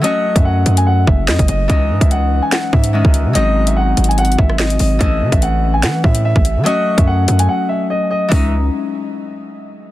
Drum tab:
HH |x--------x--------x--x-----------------x--x-----|x--------x--x-----------x--------x--------x-----|x--------x--------x-x-x-x-x-x----------x--o-----|x--------x--x-----------x--------x--------x-----|
CP |------------------------------------x-----------|------------------------x-----------------------|------------------------------------x-----------|------------------------x-----------------------|
SD |------------------------------------o-----------|------------------------o-----------------------|---------------------------------r--o-----------|------------------------o-----------------------|
BD |---------o--------------------o--------o--------|o--------o--------------------o--------o--------|------------------------------o-----------------|o--------o--------------------o--------o--------|

HH |x--------x--------x--x--------------------------|o-----------------------------------------------|
CP |------------------------------------------------|------------------------------------------------|
SD |------------------------------------------------|------------------------------------------------|
BD |---------o--------------------------------------|o-----------------------------------------------|